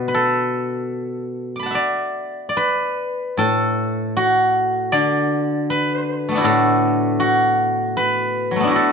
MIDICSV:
0, 0, Header, 1, 2, 480
1, 0, Start_track
1, 0, Tempo, 778210
1, 582, Tempo, 807537
1, 1552, Time_signature, 4, 2, 24, 8
1, 2502, Tempo, 757576
1, 5511, End_track
2, 0, Start_track
2, 0, Title_t, "Guzheng"
2, 0, Program_c, 0, 107
2, 0, Note_on_c, 0, 47, 59
2, 0, Note_on_c, 0, 74, 66
2, 49, Note_on_c, 0, 71, 59
2, 89, Note_on_c, 0, 69, 78
2, 715, Note_off_c, 0, 74, 0
2, 947, Note_on_c, 0, 86, 32
2, 969, Note_on_c, 0, 83, 35
2, 988, Note_on_c, 0, 81, 36
2, 1007, Note_on_c, 0, 78, 37
2, 1035, Note_on_c, 0, 76, 40
2, 1058, Note_off_c, 0, 47, 0
2, 1060, Note_on_c, 0, 74, 70
2, 1284, Note_off_c, 0, 71, 0
2, 1411, Note_off_c, 0, 69, 0
2, 1499, Note_off_c, 0, 74, 0
2, 1502, Note_on_c, 0, 74, 53
2, 1547, Note_on_c, 0, 71, 81
2, 1671, Note_off_c, 0, 86, 0
2, 1771, Note_off_c, 0, 83, 0
2, 1849, Note_off_c, 0, 81, 0
2, 1960, Note_off_c, 0, 78, 0
2, 2027, Note_on_c, 0, 45, 53
2, 2033, Note_on_c, 0, 69, 81
2, 2058, Note_off_c, 0, 76, 0
2, 2498, Note_on_c, 0, 66, 79
2, 2606, Note_off_c, 0, 74, 0
2, 2780, Note_off_c, 0, 71, 0
2, 2976, Note_on_c, 0, 74, 83
2, 2979, Note_on_c, 0, 50, 55
2, 2982, Note_off_c, 0, 45, 0
2, 3393, Note_off_c, 0, 69, 0
2, 3469, Note_on_c, 0, 71, 81
2, 3840, Note_on_c, 0, 57, 37
2, 3859, Note_on_c, 0, 59, 41
2, 3881, Note_on_c, 0, 62, 48
2, 3897, Note_on_c, 0, 64, 52
2, 3914, Note_off_c, 0, 66, 0
2, 3917, Note_on_c, 0, 66, 57
2, 3938, Note_on_c, 0, 45, 59
2, 3944, Note_on_c, 0, 69, 85
2, 4146, Note_off_c, 0, 74, 0
2, 4415, Note_off_c, 0, 66, 0
2, 4418, Note_on_c, 0, 66, 80
2, 4419, Note_off_c, 0, 50, 0
2, 4765, Note_off_c, 0, 71, 0
2, 4906, Note_on_c, 0, 71, 88
2, 5251, Note_on_c, 0, 54, 37
2, 5280, Note_off_c, 0, 57, 0
2, 5283, Note_on_c, 0, 57, 43
2, 5307, Note_off_c, 0, 59, 0
2, 5309, Note_on_c, 0, 59, 49
2, 5324, Note_off_c, 0, 62, 0
2, 5327, Note_on_c, 0, 62, 53
2, 5334, Note_off_c, 0, 69, 0
2, 5350, Note_off_c, 0, 64, 0
2, 5352, Note_on_c, 0, 64, 61
2, 5374, Note_off_c, 0, 66, 0
2, 5376, Note_off_c, 0, 45, 0
2, 5377, Note_on_c, 0, 66, 62
2, 5390, Note_off_c, 0, 54, 0
2, 5406, Note_on_c, 0, 69, 88
2, 5511, Note_off_c, 0, 57, 0
2, 5511, Note_off_c, 0, 59, 0
2, 5511, Note_off_c, 0, 62, 0
2, 5511, Note_off_c, 0, 64, 0
2, 5511, Note_off_c, 0, 66, 0
2, 5511, Note_off_c, 0, 69, 0
2, 5511, Note_off_c, 0, 71, 0
2, 5511, End_track
0, 0, End_of_file